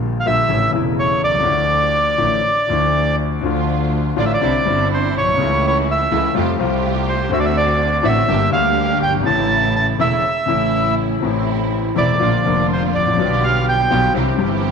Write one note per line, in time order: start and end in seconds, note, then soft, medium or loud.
0.00 0.22 A#1 medium
0.00 0.22 A#2 medium
0.00 0.21 D3 medium
0.00 0.22 G3 medium
0.00 0.22 A#3 medium
0.00 0.23 G4 medium
0.20 0.26 F5 medium
0.26 0.46 A#1 medium
0.26 0.46 A#2 medium
0.26 0.46 D3 medium
0.26 0.46 G3 soft
0.26 0.46 A#3 medium
0.26 0.46 G4 medium
0.26 0.71 E5 medium
0.49 0.70 A1 medium
0.49 0.70 A2 medium
0.49 0.70 C#3 medium
0.49 0.70 E3 medium
0.49 0.70 A3 medium
0.49 0.70 E4 medium
0.71 1.43 E1 medium
0.71 1.22 E1 medium
0.71 1.43 E2 medium
0.71 1.42 C#3 medium
0.71 1.43 E3 medium
0.71 1.43 A3 medium
0.71 1.44 E4 medium
0.99 1.22 C#5 medium
1.23 1.46 C2 medium
1.23 3.16 D5 loud
1.27 1.34 B1 soft
1.34 1.41 C2 medium
1.40 1.47 C#2 medium
1.40 2.15 F3 soft
1.45 2.15 D2 medium
1.45 2.16 D2 medium
1.45 2.16 D3 medium
1.45 2.16 A3 soft
1.45 2.16 E4 medium
2.18 2.40 A1 medium
2.18 2.41 A1 medium
2.18 2.40 A2 medium
2.18 2.39 D3 medium
2.18 2.40 F3 medium
2.18 2.40 A3 medium
2.18 2.40 E4 medium
2.67 3.40 D2 medium
2.67 2.68 D3 medium
2.67 3.40 D3 medium
2.67 3.39 F3 soft
2.67 3.40 A3 soft
2.71 3.41 E4 medium
3.41 4.13 D2 medium
3.41 4.13 D3 medium
3.41 4.13 F3 medium
3.41 4.13 A3 medium
3.41 4.13 D4 medium
3.41 4.13 F4 medium
3.45 4.14 F4 medium
4.16 4.37 A1 medium
4.16 4.37 A2 medium
4.16 4.37 D3 medium
4.16 4.37 F3 medium
4.16 4.37 A3 medium
4.16 4.37 D4 medium
4.16 4.37 F4 medium
4.16 4.25 D5 medium
4.26 4.32 E5 medium
4.34 4.88 D5 medium
4.40 4.62 C2 medium
4.40 4.62 C3 medium
4.40 4.62 D3 medium
4.40 4.62 G3 medium
4.40 4.61 C4 medium
4.40 4.62 C4 medium
4.40 4.61 D4 medium
4.40 4.62 E4 medium
4.64 5.14 G1 medium
4.64 5.36 G1 medium
4.64 5.36 G2 medium
4.64 5.35 D3 medium
4.64 5.35 G3 medium
4.64 5.35 C4 medium
4.64 5.36 C4 medium
4.64 5.35 D4 medium
4.64 5.35 E4 medium
4.64 5.36 E4 medium
4.94 5.15 C5 medium
5.15 5.38 B1 medium
5.15 5.66 C#5 medium
5.20 5.27 A#1 soft
5.27 5.33 B1 medium
5.34 5.40 C2 medium
5.34 6.08 C#3 medium
5.34 6.08 A3 medium
5.34 6.08 C#4 medium
5.38 6.08 C#2 medium
5.38 6.08 E3 medium
5.38 6.08 A3 medium
5.38 6.08 E4 medium
5.38 6.09 E4 medium
5.68 5.77 C#5 medium
5.91 6.34 E5 medium
6.11 6.32 C#2 medium
6.11 6.32 C#3 medium
6.11 6.32 E3 medium
6.11 6.32 A3 medium
6.11 6.32 C#4 medium
6.11 6.32 E4 medium
6.34 6.56 F2 medium
6.34 6.55 C3 medium
6.34 6.56 F3 medium
6.34 6.55 G3 medium
6.34 6.56 A3 medium
6.34 6.56 F4 medium
6.34 6.56 G4 medium
6.58 7.28 C2 medium
6.58 7.29 C2 medium
6.58 7.28 C3 medium
6.58 7.28 G3 medium
6.58 7.29 A3 medium
6.58 7.29 F4 medium
6.58 7.29 G4 medium
7.09 7.31 C5 medium
7.29 8.00 D2 medium
7.29 8.01 D2 medium
7.29 8.00 D3 medium
7.29 8.00 A3 medium
7.29 8.01 C4 medium
7.29 8.01 D4 medium
7.29 8.01 F#4 medium
7.33 7.39 E5 medium
7.40 7.45 D5 medium
7.45 7.56 E5 medium
7.57 8.07 D5 medium
8.03 8.25 A1 medium
8.03 8.24 A2 medium
8.03 8.24 D3 medium
8.03 8.24 A3 medium
8.03 8.25 C4 medium
8.03 8.25 D4 medium
8.03 8.25 F#4 medium
8.03 8.50 E5 medium
8.28 8.49 G1 medium
8.28 8.50 G1 medium
8.28 8.49 G2 medium
8.28 8.49 D3 medium
8.28 8.49 G3 medium
8.28 8.49 A#3 medium
8.28 8.49 D4 medium
8.28 8.49 G4 medium
8.51 9.22 D2 medium
8.51 9.01 D2 medium
8.51 9.22 D3 medium
8.51 9.22 G3 medium
8.51 9.22 A#3 medium
8.51 9.22 D4 medium
8.51 9.22 G4 medium
8.51 9.23 G4 medium
8.51 8.98 F5 medium
9.01 9.26 G1 medium
9.01 9.13 G5 medium
9.08 9.14 F#1 soft
9.14 9.20 G1 medium
9.20 9.26 G#1 medium
9.20 9.94 C#3 medium
9.25 9.95 A1 medium
9.25 9.96 A1 medium
9.25 9.95 A2 medium
9.25 9.95 E3 medium
9.25 9.95 A3 medium
9.25 9.96 A3 medium
9.25 9.96 C#4 medium
9.25 9.96 E4 medium
9.25 9.74 A5 medium
9.76 9.87 A5 medium
9.98 10.20 E1 medium
9.98 10.20 E2 medium
9.98 10.20 C#3 medium
9.98 10.20 E3 medium
9.98 10.20 A3 medium
9.98 10.20 C#4 medium
9.98 10.20 E4 medium
9.98 10.95 E5 medium
10.46 11.19 A1 medium
10.46 11.19 A2 medium
10.46 11.18 C#3 medium
10.46 11.19 E3 medium
10.46 11.19 A3 medium
10.46 11.19 C#4 medium
10.46 11.19 E4 medium
10.46 11.20 E4 medium
11.20 11.93 A1 medium
11.20 11.93 A2 medium
11.20 11.91 C3 medium
11.20 11.92 E3 medium
11.20 11.93 A3 medium
11.20 11.93 C4 medium
11.20 11.93 E4 medium
11.25 11.94 E4 medium
11.95 12.17 E1 medium
11.95 12.17 E2 medium
11.95 12.16 C3 medium
11.95 12.16 E3 medium
11.95 12.17 A3 medium
11.95 12.17 C4 medium
11.95 12.17 E4 medium
11.95 12.66 D5 medium
12.20 12.41 A#1 medium
12.20 12.42 A#1 medium
12.20 12.41 A#2 medium
12.20 12.41 D3 medium
12.20 12.41 F3 medium
12.20 12.41 A#3 medium
12.20 12.41 D4 medium
12.20 12.41 F4 medium
12.20 12.42 F4 medium
12.43 13.15 F1 medium
12.43 12.93 F1 medium
12.43 13.14 F2 medium
12.43 13.14 D3 medium
12.43 13.14 F3 medium
12.43 13.14 A#3 medium
12.43 13.15 A#3 medium
12.43 13.15 D4 medium
12.43 13.15 F4 medium
12.43 13.16 F4 medium
12.73 12.83 C5 medium
12.94 13.18 A1 medium
12.94 13.44 D5 medium
13.00 13.06 G#1 soft
13.06 13.12 A1 medium
13.12 13.18 A#1 medium
13.16 13.87 B1 medium
13.16 13.88 B1 medium
13.16 13.87 B2 medium
13.16 13.86 D3 medium
13.16 13.87 G3 medium
13.16 13.87 B3 medium
13.16 13.88 B3 medium
13.16 13.87 F4 medium
13.16 13.87 G4 medium
13.21 13.89 F4 medium
13.44 13.66 F5 medium
13.69 14.13 G5 medium
13.90 14.11 B1 medium
13.90 14.11 B2 medium
13.90 14.11 D3 medium
13.90 14.11 G3 medium
13.90 14.11 B3 medium
13.90 14.11 F4 medium
13.90 14.11 G4 medium
14.14 14.35 C2 medium
14.14 14.35 C3 medium
14.14 14.35 E3 medium
14.14 14.35 G3 medium
14.14 14.35 C4 medium
14.14 14.35 E4 medium
14.14 14.35 G4 medium
14.36 14.71 G1 medium
14.36 14.71 G2 medium
14.36 14.71 E3 medium
14.36 14.71 G3 medium
14.36 14.71 C4 medium
14.36 14.71 E4 medium
14.36 14.71 G4 medium